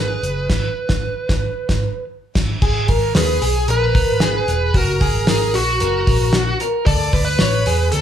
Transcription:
0.00 0.15 G#1 medium
0.00 0.50 G#4 medium
0.00 2.05 B4 medium
0.23 0.46 F#1 medium
0.23 closed hi-hat medium
0.50 0.68 G#1 loud
0.50 kick loud
0.50 snare loud
0.50 crash medium
0.89 1.08 G#1 medium
0.89 kick medium
0.89 snare medium
1.29 1.48 G#1 medium
1.29 kick loud
1.29 snare loud
1.69 1.88 G#1 loud
1.69 kick loud
1.69 snare loud
2.35 2.54 G#1 medium
2.35 kick loud
2.35 snare loud
2.35 crash medium
2.62 2.85 G#1 loud
2.62 2.88 G#4 medium
2.62 kick loud
2.62 crash loud
2.88 3.12 G#1 loud
2.88 3.15 A#4 medium
2.88 kick medium
2.88 hi-hat pedal medium
2.88 open hi-hat medium
3.15 3.38 D#2 medium
3.15 3.66 G#4 loud
3.15 3.41 B4 medium
3.15 snare loud
3.15 hi-hat pedal medium
3.15 open hi-hat loud
3.42 3.64 B1 medium
3.42 3.68 G#4 medium
3.42 hi-hat pedal medium
3.42 open hi-hat medium
3.68 3.91 A#1 loud
3.68 3.94 A#4 medium
3.68 4.76 B4 loud
3.68 hi-hat pedal medium
3.68 open hi-hat loud
3.95 4.40 G#1 medium
3.95 4.21 A#4 medium
3.95 kick loud
3.95 hi-hat pedal medium
3.95 open hi-hat medium
4.20 4.71 G#4 medium
4.20 snare loud
4.20 hi-hat pedal medium
4.20 open hi-hat medium
4.48 4.71 E1 loud
4.48 hi-hat pedal medium
4.48 open hi-hat medium
4.74 5.08 F#1 loud
4.74 5.01 F#4 loud
4.74 5.29 A#4 loud
4.74 kick loud
4.74 hi-hat pedal medium
4.74 open hi-hat medium
5.00 5.27 G#4 medium
5.00 kick medium
5.00 hi-hat pedal medium
5.00 open hi-hat medium
5.15 5.55 G#1 medium
5.27 5.55 G#4 medium
5.27 5.54 A#4 medium
5.27 snare loud
5.27 hi-hat pedal medium
5.27 open hi-hat loud
5.54 5.77 A#1 loud
5.54 5.80 F#4 medium
5.54 6.56 F#4 medium
5.54 hi-hat pedal medium
5.54 open hi-hat medium
5.80 6.03 F#1 medium
5.80 6.06 A#4 medium
5.80 hi-hat pedal medium
5.80 open hi-hat loud
6.07 6.52 A#1 medium
6.07 6.33 A#4 medium
6.07 kick loud
6.07 hi-hat pedal medium
6.07 open hi-hat medium
6.33 6.60 F#4 loud
6.33 snare loud
6.33 hi-hat pedal medium
6.33 open hi-hat medium
6.60 6.86 A#4 medium
6.60 hi-hat pedal medium
6.60 open hi-hat medium
6.86 7.09 D2 loud
6.86 7.13 A4 loud
6.86 7.23 D5 loud
6.86 kick loud
6.86 hi-hat pedal medium
6.86 open hi-hat medium
7.13 7.36 D2 loud
7.13 7.40 B4 medium
7.13 kick medium
7.13 hi-hat pedal medium
7.13 open hi-hat medium
7.25 7.88 B4 medium
7.39 7.62 A1 loud
7.39 7.66 C#5 loud
7.39 snare loud
7.39 hi-hat pedal medium
7.39 open hi-hat medium
7.66 7.89 E2 medium
7.66 7.93 G#4 medium
7.66 hi-hat pedal medium
7.66 open hi-hat medium
7.92 8.01 D2 loud
7.92 8.01 A4 loud
7.92 8.01 A4 medium
7.92 hi-hat pedal medium
7.92 open hi-hat loud

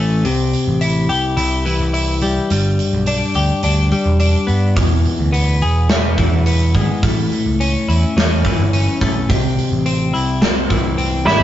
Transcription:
0.00 0.23 A1 medium
0.00 0.25 E3 medium
0.00 0.25 A3 medium
0.00 0.25 C#4 medium
0.00 0.25 A4 medium
0.25 0.52 C2 medium
0.25 1.66 C3 medium
0.25 open hi-hat medium
0.53 open hi-hat soft
0.67 1.07 A1 medium
0.81 1.36 E4 medium
0.81 open hi-hat medium
1.09 1.36 C2 medium
1.09 2.51 G4 medium
1.09 open hi-hat soft
1.37 1.78 C2 medium
1.37 1.92 E4 medium
1.37 open hi-hat medium
1.66 2.51 E3 medium
1.66 open hi-hat soft
1.80 2.20 C2 medium
1.94 2.51 E4 medium
1.94 open hi-hat medium
2.21 2.36 C2 medium
2.21 2.51 G3 medium
2.21 open hi-hat soft
2.50 2.78 G1 medium
2.50 3.92 G2 medium
2.50 open hi-hat medium
2.79 open hi-hat soft
2.93 3.20 B1 medium
3.06 3.63 D4 medium
3.06 open hi-hat medium
3.34 3.49 D2 medium
3.34 4.77 G4 medium
3.34 open hi-hat soft
3.63 3.90 D2 medium
3.63 4.19 D4 medium
3.63 open hi-hat medium
3.92 4.77 G3 medium
3.92 open hi-hat soft
4.06 4.33 E1 medium
4.20 4.77 D4 medium
4.20 open hi-hat medium
4.47 4.75 G2 medium
4.47 4.76 B3 medium
4.47 open hi-hat soft
4.76 5.03 E1 medium
4.76 6.18 E2 medium
4.76 kick loud
4.76 open hi-hat medium
5.05 open hi-hat soft
5.19 5.59 D2 medium
5.33 5.88 B3 medium
5.33 open hi-hat medium
5.61 5.89 E1 medium
5.61 7.03 G#4 medium
5.61 open hi-hat soft
5.89 6.31 E1 medium
5.89 6.45 B3 medium
5.89 snare loud
5.89 open hi-hat medium
6.18 8.45 E3 medium
6.18 kick medium
6.18 open hi-hat soft
6.33 6.73 E1 medium
6.46 7.03 B3 medium
6.46 open hi-hat medium
6.75 6.88 G#1 medium
6.75 7.03 G#3 medium
6.75 kick medium
6.75 open hi-hat soft
7.03 7.30 A1 medium
7.03 8.45 A2 medium
7.03 kick loud
7.03 open hi-hat medium
7.32 open hi-hat soft
7.46 7.73 C#2 medium
7.60 8.16 C#4 medium
7.60 open hi-hat medium
7.88 8.02 E2 medium
7.88 9.30 E4 medium
7.88 open hi-hat medium
8.16 8.43 E2 medium
8.16 8.72 C#4 medium
8.16 snare loud
8.16 open hi-hat medium
8.45 9.30 E3 medium
8.45 kick medium
8.45 open hi-hat soft
8.58 8.85 G1 medium
8.73 9.30 C#4 medium
8.73 open hi-hat medium
9.01 9.28 B1 medium
9.01 9.30 A3 medium
9.01 kick medium
9.01 open hi-hat soft
9.29 9.56 C2 medium
9.29 10.70 C3 medium
9.29 kick loud
9.29 open hi-hat medium
9.59 open hi-hat soft
9.72 10.12 A1 medium
9.86 10.40 C4 medium
9.86 open hi-hat medium
10.14 10.41 C2 medium
10.14 11.43 E4 medium
10.14 open hi-hat soft
10.42 10.82 C2 medium
10.42 10.97 C4 medium
10.42 snare loud
10.42 open hi-hat medium
10.70 11.43 E3 medium
10.70 kick medium
10.70 open hi-hat soft
10.85 11.25 C2 medium
10.98 11.43 C4 medium
10.98 open hi-hat medium
11.25 11.40 G#1 medium
11.25 11.43 G3 medium
11.25 11.43 E4 medium
11.25 11.43 E5 medium
11.25 snare soft
11.40 floor tom medium

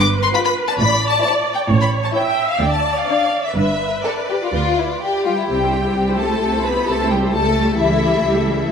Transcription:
0.00 0.25 G1 medium
0.00 0.25 G2 medium
0.00 0.78 B4 medium
0.00 0.08 D6 medium
0.23 0.28 C6 loud
0.34 0.68 F4 medium
0.34 0.68 B4 medium
0.34 0.39 B5 loud
0.45 0.53 B5 loud
0.68 0.73 A5 loud
0.79 1.15 A1 medium
0.79 1.16 A2 medium
0.79 1.70 D5 medium
0.79 1.09 B5 loud
1.09 1.23 A5 medium
1.24 1.58 E4 medium
1.24 1.59 C5 medium
1.24 1.32 A5 loud
1.54 1.61 G5 medium
1.70 2.06 A1 medium
1.70 2.07 A2 medium
1.70 2.16 C#5 medium
1.81 1.89 B5 medium
2.04 2.08 A5 medium
2.13 2.50 E4 medium
2.13 2.50 C#5 medium
2.13 2.61 E5 medium
2.13 2.23 G5 medium
2.25 2.48 G5 medium
2.48 2.61 F5 medium
2.59 2.99 D2 medium
2.59 3.56 D5 medium
2.59 2.72 G5 medium
2.71 2.95 A5 medium
2.95 3.05 F5 medium
3.06 3.44 D4 medium
3.06 3.44 D5 medium
3.06 3.42 F5 medium
3.43 3.54 E5 medium
3.56 3.95 G1 medium
3.56 3.95 G2 medium
3.56 5.22 B4 medium
3.56 4.04 E5 medium
4.04 4.13 A4 medium
4.04 5.25 D5 medium
4.30 4.35 G4 medium
4.43 4.53 F4 medium
4.53 4.91 D2 medium
4.53 4.92 D2 medium
4.53 4.77 F4 medium
4.78 4.90 E4 medium
4.90 5.02 F4 medium
5.03 5.24 G4 medium
5.24 5.48 G3 medium
5.24 5.30 F4 medium
5.24 5.48 G4 medium
5.24 5.47 G5 medium
5.37 5.49 E4 soft
5.49 5.90 C2 medium
5.49 6.18 G3 medium
5.49 5.60 C4 soft
5.49 5.60 G4 soft
5.49 6.17 G4 medium
5.49 6.18 G5 medium
5.61 5.73 E4 soft
5.61 5.73 C5 soft
5.73 5.85 C4 soft
5.73 5.85 G4 soft
5.85 5.96 E4 soft
5.85 5.96 C5 soft
5.95 6.36 C2 soft
5.95 6.07 C4 soft
5.95 6.07 G4 soft
6.08 6.19 E4 soft
6.08 6.19 C5 soft
6.18 6.65 A3 medium
6.18 6.31 C4 soft
6.18 6.31 G4 soft
6.18 6.65 A4 medium
6.18 6.64 A5 medium
6.31 6.42 E4 soft
6.31 6.42 C5 soft
6.41 6.83 C2 soft
6.41 6.53 C4 soft
6.41 6.53 G4 soft
6.54 6.66 E4 soft
6.54 6.66 C5 soft
6.64 6.88 B3 medium
6.64 6.77 C4 soft
6.64 6.77 G4 soft
6.64 6.88 B4 medium
6.64 6.88 B5 medium
6.76 6.88 E4 soft
6.76 6.88 C5 soft
6.87 7.29 C2 soft
6.87 7.12 A3 medium
6.87 6.99 C4 soft
6.87 6.99 G4 soft
6.87 7.11 A4 medium
6.87 7.11 A5 medium
6.99 7.11 E4 soft
6.99 7.11 C5 soft
7.09 7.35 G3 medium
7.09 7.23 C4 soft
7.09 7.23 G4 soft
7.09 7.34 G4 medium
7.09 7.17 G5 medium
7.23 7.34 E4 soft
7.23 7.35 C5 soft
7.33 7.74 C#2 medium
7.33 7.45 G3 soft
7.33 7.80 A3 medium
7.33 7.45 G4 soft
7.33 7.79 A4 medium
7.33 7.78 A5 medium
7.46 7.57 A3 soft
7.46 7.58 A4 soft
7.59 7.69 G3 soft
7.59 7.69 G4 soft
7.69 7.80 A3 soft
7.69 7.80 A4 soft
7.78 8.20 C#2 medium
7.78 8.69 E3 medium
7.78 7.91 G3 soft
7.78 8.68 E4 medium
7.78 7.91 G4 soft
7.78 8.68 E5 medium
7.92 8.03 A3 soft
7.92 8.03 A4 soft
8.03 8.14 G3 medium
8.03 8.14 G4 medium
8.15 8.26 A3 soft
8.15 8.26 A4 soft
8.25 8.65 C#2 medium
8.25 8.36 G3 medium
8.25 8.36 G4 medium
8.37 8.48 A3 soft
8.37 8.48 A4 medium
8.48 8.59 G3 medium
8.48 8.59 G4 medium
8.59 8.71 A3 medium
8.59 8.70 A4 medium

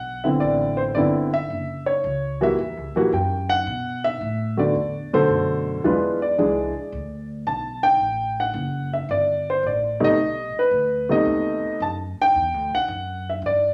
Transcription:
0.00 0.39 B1 medium
0.00 0.26 F#5 loud
0.24 0.92 D3 medium
0.24 0.92 B3 medium
0.24 0.92 C4 medium
0.24 0.92 E4 medium
0.24 0.41 E5 medium
0.40 0.94 A1 medium
0.40 0.75 D5 medium
0.77 0.82 C5 medium
0.95 1.48 G1 medium
0.95 1.30 D3 medium
0.95 1.30 B3 medium
0.95 1.30 C4 medium
0.95 1.30 E4 medium
0.95 1.03 D5 medium
1.34 1.89 E5 loud
1.50 2.03 F#1 medium
1.86 2.43 C#5 medium
2.04 2.57 C#2 medium
2.41 2.56 E3 medium
2.41 2.57 G3 medium
2.41 2.57 A#3 medium
2.41 2.57 F#4 medium
2.41 3.16 E5 loud
2.59 2.77 E2 medium
2.77 2.94 C#2 medium
2.95 3.11 A#1 medium
2.95 3.11 E3 medium
2.95 3.11 G3 medium
2.95 3.11 A#3 medium
2.95 3.11 F#4 medium
3.13 3.65 F#2 medium
3.13 3.52 G5 medium
3.49 4.06 F#5 loud
3.67 4.20 B2 medium
4.04 4.60 E5 loud
4.21 4.74 A2 medium
4.57 4.73 D3 medium
4.57 4.73 A3 medium
4.57 4.73 B3 medium
4.57 4.73 F#4 medium
4.57 5.15 D5 medium
4.75 5.28 E2 medium
5.13 5.81 B2 medium
5.13 5.81 D3 medium
5.13 5.81 A3 medium
5.13 5.81 A4 medium
5.13 5.87 C5 medium
5.29 5.82 F#2 medium
5.84 6.37 E2 medium
5.84 6.18 E3 medium
5.84 6.18 G#3 medium
5.84 6.18 D4 medium
5.84 6.18 F4 medium
5.84 6.20 B4 medium
6.22 7.26 D5 medium
6.38 6.73 C2 medium
6.38 6.72 E3 medium
6.38 6.72 G#3 medium
6.38 6.72 D4 medium
6.38 6.72 G#4 medium
6.76 muted upright bass stroke soft
6.92 7.45 D2 medium
7.47 7.99 B1 medium
7.47 7.85 A5 medium
7.83 8.39 G5 loud
8.00 8.53 A1 medium
8.40 8.90 F#5 medium
8.54 9.07 F#1 medium
8.93 9.09 E5 medium
9.09 9.61 G1 medium
9.09 9.48 D5 medium
9.50 9.64 C5 medium
9.63 10.16 A1 medium
9.63 10.00 D5 medium
10.00 10.16 C3 medium
10.00 10.16 A3 medium
10.00 10.16 B3 medium
10.00 10.16 D#4 medium
10.04 10.58 D#5 loud
10.17 10.52 B1 medium
10.55 muted upright bass stroke soft
10.59 11.07 B4 medium
10.71 11.24 D2 medium
11.09 11.77 C3 medium
11.09 11.77 A3 medium
11.09 11.77 B3 medium
11.09 11.77 D#4 medium
11.09 11.83 D#5 loud
11.25 11.60 D#2 medium
11.63 muted upright bass stroke soft
11.80 12.15 F#2 medium
11.80 11.90 A5 medium
12.19 12.75 G5 loud
12.19 muted upright bass stroke soft
12.35 12.54 E2 medium
12.54 12.70 D2 medium
12.71 12.87 B1 medium
12.71 13.29 F#5 loud
12.88 13.40 F#2 medium
13.29 13.35 E5 medium
13.42 13.74 G2 medium
13.46 13.74 D5 medium

